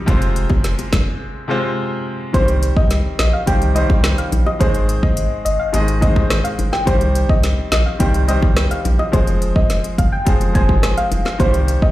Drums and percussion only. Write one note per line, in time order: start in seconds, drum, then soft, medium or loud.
0.08 kick loud
0.08 closed hi-hat medium
0.08 high bongo medium
0.22 closed hi-hat medium
0.36 closed hi-hat medium
0.49 kick medium
0.49 high bongo medium
0.64 snare medium
0.64 closed hi-hat medium
0.79 closed hi-hat medium
0.79 high bongo medium
0.93 kick medium
0.93 snare loud
0.93 closed hi-hat medium
0.93 low bongo medium
2.34 kick loud
2.34 closed hi-hat medium
2.34 high bongo medium
2.48 closed hi-hat medium
2.63 closed hi-hat medium
2.77 kick medium
2.91 snare medium
2.91 closed hi-hat medium
3.19 snare loud
3.19 closed hi-hat medium
3.47 kick medium
3.47 closed hi-hat medium
3.47 high bongo medium
3.62 closed hi-hat medium
3.76 closed hi-hat medium
3.90 kick medium
3.90 high bongo medium
4.04 cross-stick medium
4.04 snare loud
4.04 closed hi-hat medium
4.18 closed hi-hat medium
4.32 closed hi-hat medium
4.32 low bongo medium
4.46 high bongo medium
4.61 kick loud
4.61 closed hi-hat medium
4.61 high bongo medium
4.75 closed hi-hat medium
4.89 closed hi-hat medium
5.03 kick medium
5.17 closed hi-hat medium
5.46 closed hi-hat medium
5.74 closed hi-hat medium
5.74 high bongo medium
5.88 closed hi-hat medium
6.02 kick medium
6.02 closed hi-hat medium
6.16 kick medium
6.16 high bongo medium
6.30 cross-stick medium
6.30 snare loud
6.30 closed hi-hat medium
6.45 closed hi-hat medium
6.59 closed hi-hat medium
6.59 low bongo medium
6.73 snare medium
6.73 high bongo medium
6.87 kick loud
6.87 closed hi-hat medium
6.87 high bongo medium
7.01 closed hi-hat medium
7.15 closed hi-hat medium
7.29 kick medium
7.43 snare medium
7.43 closed hi-hat medium
7.72 snare loud
7.72 closed hi-hat medium
8.00 kick medium
8.00 closed hi-hat medium
8.00 high bongo medium
8.14 closed hi-hat medium
8.29 closed hi-hat medium
8.42 kick medium
8.42 high bongo medium
8.57 cross-stick medium
8.57 snare loud
8.57 closed hi-hat medium
8.71 closed hi-hat medium
8.85 closed hi-hat medium
8.85 low bongo medium
8.99 high bongo medium
9.13 kick loud
9.13 closed hi-hat medium
9.13 high bongo medium
9.27 closed hi-hat medium
9.42 closed hi-hat medium
9.56 kick medium
9.70 snare medium
9.70 closed hi-hat medium
9.84 closed hi-hat medium
9.98 kick loud
9.98 closed hi-hat medium
10.27 kick medium
10.27 closed hi-hat medium
10.27 high bongo medium
10.41 closed hi-hat medium
10.55 kick loud
10.55 closed hi-hat medium
10.69 kick medium
10.69 high bongo medium
10.83 cross-stick medium
10.83 snare loud
10.83 closed hi-hat medium
10.98 closed hi-hat medium
11.11 closed hi-hat medium
11.11 low bongo medium
11.25 snare medium
11.25 high bongo medium
11.40 kick loud
11.40 closed hi-hat medium
11.40 high bongo medium
11.54 closed hi-hat medium
11.68 closed hi-hat medium
11.82 kick medium